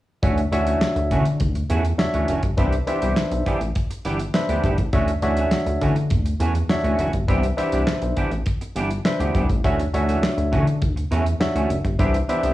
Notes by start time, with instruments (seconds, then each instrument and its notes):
0.22 analog synth bass D2, clean electric guitar E3 A3 C#4 F#4, tine electric piano D4 F#4 C#5 E5, kick, closed hi-hat
0.38 closed hi-hat
0.52 analog synth bass D2, clean electric guitar E3 A3 C#4 F#4, tine electric piano D4 F#4 C#5 E5, closed hi-hat
0.66 clean electric guitar E3 A3 C#4 F#4, closed hi-hat
0.81 snare, clap
0.96 analog synth bass D2, muted clean electric guitar stroke, closed hi-hat
1.11 analog synth bass D3, clean electric guitar E3 A3 C#4 F#4, kick, closed hi-hat
1.25 muted clean electric guitar stroke, closed hi-hat
1.40 analog synth bass D2, muted clean electric guitar stroke, kick, closed hi-hat
1.55 muted clean electric guitar stroke, closed hi-hat
1.70 analog synth bass E2, clean electric guitar E3 A3 C#4 F#4, closed hi-hat
1.84 muted clean electric guitar stroke, closed hi-hat
1.98 tine electric piano D4 F#4 C#5 E5, muted clean electric guitar stroke, snare, clap
2.14 analog synth bass D2, clean electric guitar E3 A3 C#4 F#4, closed hi-hat
2.28 analog synth bass F#1, clean electric guitar E3 A3 C#4 F#4, closed hi-hat
2.43 analog synth bass G1, muted clean electric guitar stroke, kick, closed hi-hat
2.57 analog synth bass C2, clean electric guitar E3 B3 D4 G4, tine electric piano D4 B4 C5 E5, kick, closed hi-hat
2.72 closed hi-hat
2.87 clean electric guitar E3 B3 D4 G4, tine electric piano D4 B4 C5 E5, closed hi-hat
3.02 analog synth bass C2, clean electric guitar E3 B3 D4 G4, closed hi-hat
3.16 snare, clap
3.31 analog synth bass B1, muted clean electric guitar stroke, closed hi-hat
3.46 clean electric guitar E3 B3 D4 G4, kick, closed hi-hat
3.60 analog synth bass A1, muted clean electric guitar stroke, closed hi-hat
3.75 muted clean electric guitar stroke, kick, closed hi-hat
3.90 muted clean electric guitar stroke, closed hi-hat
4.05 analog synth bass G1, clean electric guitar E3 B3 D4 G4, closed hi-hat
4.20 muted clean electric guitar stroke, closed hi-hat
4.34 tine electric piano D4 B4 C5 E5, muted clean electric guitar stroke, snare, clap
4.49 analog synth bass D2, clean electric guitar E3 B3 D4 G4, closed hi-hat
4.64 analog synth bass G1, clean electric guitar E3 B3 D4 G4, kick, closed hi-hat
4.78 analog synth bass A1, muted clean electric guitar stroke, kick, closed hi-hat
4.93 analog synth bass D2, clean electric guitar E3 A3 C#4 F#4, tine electric piano D4 F#4 C#5 E5, kick, closed hi-hat
5.08 closed hi-hat
5.22 analog synth bass D2, clean electric guitar E3 A3 C#4 F#4, tine electric piano D4 F#4 C#5 E5, closed hi-hat
5.37 clean electric guitar E3 A3 C#4 F#4, closed hi-hat
5.51 snare, clap
5.66 analog synth bass D2, muted clean electric guitar stroke, closed hi-hat
5.81 analog synth bass D3, clean electric guitar E3 A3 C#4 F#4, kick, closed hi-hat
5.96 muted clean electric guitar stroke, closed hi-hat
6.10 analog synth bass D2, muted clean electric guitar stroke, kick, closed hi-hat
6.26 muted clean electric guitar stroke, closed hi-hat
6.40 analog synth bass E2, clean electric guitar E3 A3 C#4 F#4, closed hi-hat
6.55 muted clean electric guitar stroke, closed hi-hat
6.69 tine electric piano D4 F#4 C#5 E5, muted clean electric guitar stroke, snare, clap
6.84 analog synth bass D2, clean electric guitar E3 A3 C#4 F#4, closed hi-hat
6.98 analog synth bass F#1, clean electric guitar E3 A3 C#4 F#4, closed hi-hat
7.13 analog synth bass G1, kick, closed hi-hat
7.28 analog synth bass C2, clean electric guitar E3 B3 D4 G4, tine electric piano D4 B4 C5 E5, kick, closed hi-hat
7.44 closed hi-hat
7.57 clean electric guitar E3 B3 D4 G4, tine electric piano D4 B4 C5 E5, closed hi-hat
7.72 analog synth bass C2, clean electric guitar E3 B3 D4 G4, closed hi-hat
7.87 snare, clap
8.02 analog synth bass B1, muted clean electric guitar stroke, closed hi-hat
8.17 clean electric guitar E3 B3 D4 G4, kick, closed hi-hat
8.31 analog synth bass A1, muted clean electric guitar stroke, closed hi-hat
8.46 muted clean electric guitar stroke, kick, closed hi-hat
8.61 muted clean electric guitar stroke, closed hi-hat
8.76 analog synth bass G1, clean electric guitar E3 B3 D4 G4, closed hi-hat
8.91 muted clean electric guitar stroke, closed hi-hat
9.05 tine electric piano D4 B4 C5 E5, muted clean electric guitar stroke, snare, clap
9.20 analog synth bass D2, clean electric guitar E3 B3 D4 G4, closed hi-hat
9.35 analog synth bass C2, clean electric guitar E3 B3 D4 G4, kick, closed hi-hat
9.49 analog synth bass A1, muted clean electric guitar stroke, kick, closed hi-hat
9.64 analog synth bass D2, clean electric guitar E3 A3 C#4 F#4, tine electric piano D4 F#4 C#5 E5, kick, closed hi-hat
9.79 closed hi-hat
9.93 analog synth bass D2, clean electric guitar E3 A3 C#4 F#4, tine electric piano D4 F#4 C#5 E5, closed hi-hat
10.08 clean electric guitar E3 A3 C#4 F#4, closed hi-hat
10.23 snare, clap
10.37 analog synth bass D2, muted clean electric guitar stroke, closed hi-hat
10.52 analog synth bass D3, clean electric guitar E3 A3 C#4 F#4, kick, closed hi-hat
10.67 muted clean electric guitar stroke, closed hi-hat
10.82 analog synth bass D2, muted clean electric guitar stroke, kick, closed hi-hat
10.96 muted clean electric guitar stroke, closed hi-hat
11.11 analog synth bass E2, clean electric guitar E3 A3 C#4 F#4, closed hi-hat
11.26 muted clean electric guitar stroke, closed hi-hat
11.40 tine electric piano D4 F#4 C#5 E5, muted clean electric guitar stroke, snare, clap
11.55 analog synth bass D2, clean electric guitar E3 A3 C#4 F#4, closed hi-hat
11.70 analog synth bass F#1, muted clean electric guitar stroke, closed hi-hat
11.85 analog synth bass G1, muted clean electric guitar stroke, kick, closed hi-hat
11.99 analog synth bass C2, clean electric guitar E3 B3 D4 G4, tine electric piano D4 B4 C5 E5, kick, closed hi-hat
12.14 closed hi-hat
12.29 clean electric guitar E3 B3 D4 G4, tine electric piano D4 B4 C5 E5, closed hi-hat
12.43 analog synth bass C2, clean electric guitar E3 B3 D4 G4, closed hi-hat